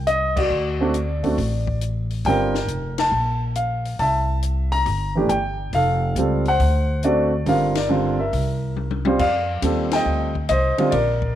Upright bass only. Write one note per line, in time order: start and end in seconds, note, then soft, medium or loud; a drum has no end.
0.00 0.47 C2 medium
0.50 1.34 D2 medium
1.38 2.21 A1 medium
2.25 2.65 G1 medium
2.68 3.09 F1 medium
3.12 3.95 A#1 medium
3.99 4.82 C2 medium
4.86 5.26 G1 medium
5.29 5.70 G1 medium
5.73 6.13 F1 medium
6.15 6.56 C#2 medium
6.60 7.42 D2 medium
7.46 8.29 G1 medium
8.33 9.16 C2 medium
9.19 9.62 F2 medium
9.62 10.05 D#2 medium
10.05 10.48 D2 medium
10.49 10.77 C2 medium
10.78 muted upright bass stroke soft
10.92 11.35 A#1 medium